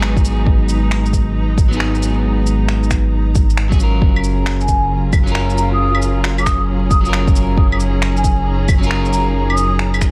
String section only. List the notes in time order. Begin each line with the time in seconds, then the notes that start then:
Already playing: G#3 D#4 B4 A#5
4.02 F#3
4.16 C#4
4.24 G#4 A#5
4.42 F4
7.77 D#4